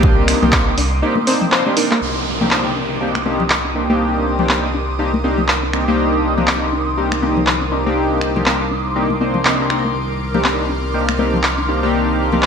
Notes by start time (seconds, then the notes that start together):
Already playing: C2 A#3 C4 D4 D#4 G4 A#4 C6 D6 D#6
0.03 kick
0.28 finger snap, open hi-hat
0.42 C2 A#3 C4 D4 D#4 G4, high conga, low conga
0.52 C4, kick, clap
0.78 C2 D4, open hi-hat
1.02 A#3 C4 D4 D#4 G4
1.16 A#3, high conga
1.27 A#3 C4 D4 D#4 C5, open hi-hat
1.41 high conga, low conga
1.52 A#3 C4 D4 D#4 C5, clap
1.66 A#3 C4 D4 D#4 G4, high conga
1.77 A#3 C4 D4 D#4 A#4, open hi-hat
1.91 A#3, clap
2.01 C2 D#4 A#4 C6 D6 D#6, downlifter
2.28 C5
2.41 A#3 C4 D4 D#4 G4 A#5, low conga
2.51 A#3 C4 D4 D#4 G4, clap
2.76 D4
3.01 A#3 C4 D4 D#4 G4
3.15 A#3, finger snap
3.25 A#3 C4 D4 D#4 G4, high conga
3.40 low conga
3.50 clap
3.65 D4
3.75 A#3 C4 D4 D#4 G4
3.90 A#3 C4 D4 D#4 G4
4.39 A#3 C4 D4 D#4 G4, high conga, low conga
4.49 A#3 C4 D4 D#4 G4, clap
4.74 D4
4.99 A#3 C4 D4 D#4 G4
5.14 A#3, high conga
5.24 A#3 C4 D4 D#4 G4
5.38 high conga, low conga
5.48 clap
5.63 D4
5.73 A#3 C4 D4 D#4 G4, finger snap
5.88 A#3 C4 D4 D#4 G4
6.37 A#3 C4 D4 D#4 G4, low conga
6.47 A#3 C4 D4 D#4 G4, clap
6.73 D4
6.97 A#3 C4 D4 D#4 G4
7.12 A#3, finger snap
7.22 A#3 C4 D4 D#4 G4, high conga
7.37 low conga
7.47 clap
7.62 D4
7.72 A#3 C4 D4 D#4 G4
7.86 A#3 C4 D4 D#4 G4
8.21 finger snap
8.36 A#3 C4 D4 D#4 G4, high conga, low conga
8.46 A#3 C4 D4 D#4 G4, clap
8.71 D4
8.96 A#3 C4 D4 D#4 G4
9.10 A#3, high conga
9.21 A#3 C4 D4 D#4 C5
9.34 high conga, low conga
9.45 A#3 C4 D4 D#4 C5, clap
9.60 A#3 C4 D4 D#4 G4
9.70 A#3 C4 D4 D#4 A#4, finger snap
9.85 A#3
9.95 C2 F6
10.34 A#3 C4 D4 D#4 G4, low conga
10.44 A#3 C4 D4 D#4 G4, clap
10.69 D4
10.94 A#3 C4 D4 D#4 G4
11.09 A#3, finger snap
11.18 A#3 C4 D4 D#4 G4, high conga
11.34 low conga
11.43 D#4, clap
11.58 D4
11.68 A#3 C4 D4 D#4 G4
11.83 A#3 C4 D4 D#4 G4
12.32 A#3 C4 D4 D#4 G4, high conga, low conga
12.42 A#3 C4 D4 D#4 G4, clap